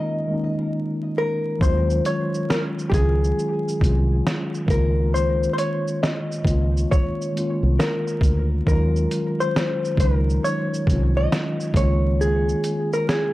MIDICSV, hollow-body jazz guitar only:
0, 0, Header, 1, 2, 480
1, 0, Start_track
1, 0, Tempo, 882353
1, 875, Time_signature, 4, 2, 24, 8
1, 7253, End_track
2, 0, Start_track
2, 0, Title_t, "Hollow-body jazz guitar"
2, 0, Program_c, 0, 26
2, 0, Note_on_c, 0, 75, 105
2, 642, Note_on_c, 0, 70, 95
2, 658, Note_off_c, 0, 75, 0
2, 862, Note_off_c, 0, 70, 0
2, 881, Note_on_c, 0, 72, 93
2, 1120, Note_off_c, 0, 72, 0
2, 1122, Note_on_c, 0, 73, 86
2, 1360, Note_on_c, 0, 70, 90
2, 1366, Note_off_c, 0, 73, 0
2, 1417, Note_off_c, 0, 70, 0
2, 1575, Note_on_c, 0, 67, 64
2, 1597, Note_off_c, 0, 67, 0
2, 1600, Note_on_c, 0, 68, 91
2, 2536, Note_off_c, 0, 68, 0
2, 2558, Note_on_c, 0, 70, 96
2, 2780, Note_off_c, 0, 70, 0
2, 2797, Note_on_c, 0, 72, 91
2, 3004, Note_off_c, 0, 72, 0
2, 3011, Note_on_c, 0, 72, 69
2, 3036, Note_off_c, 0, 72, 0
2, 3039, Note_on_c, 0, 73, 80
2, 3278, Note_off_c, 0, 73, 0
2, 3280, Note_on_c, 0, 75, 92
2, 3759, Note_off_c, 0, 75, 0
2, 3761, Note_on_c, 0, 73, 97
2, 4216, Note_off_c, 0, 73, 0
2, 4240, Note_on_c, 0, 70, 91
2, 4611, Note_off_c, 0, 70, 0
2, 4721, Note_on_c, 0, 70, 98
2, 5116, Note_on_c, 0, 72, 90
2, 5125, Note_off_c, 0, 70, 0
2, 5416, Note_off_c, 0, 72, 0
2, 5440, Note_on_c, 0, 70, 80
2, 5681, Note_on_c, 0, 73, 101
2, 5685, Note_off_c, 0, 70, 0
2, 6051, Note_off_c, 0, 73, 0
2, 6076, Note_on_c, 0, 75, 94
2, 6400, Note_off_c, 0, 75, 0
2, 6402, Note_on_c, 0, 73, 90
2, 6642, Note_on_c, 0, 68, 90
2, 6646, Note_off_c, 0, 73, 0
2, 7035, Note_off_c, 0, 68, 0
2, 7037, Note_on_c, 0, 70, 73
2, 7113, Note_off_c, 0, 70, 0
2, 7122, Note_on_c, 0, 68, 83
2, 7253, Note_off_c, 0, 68, 0
2, 7253, End_track
0, 0, End_of_file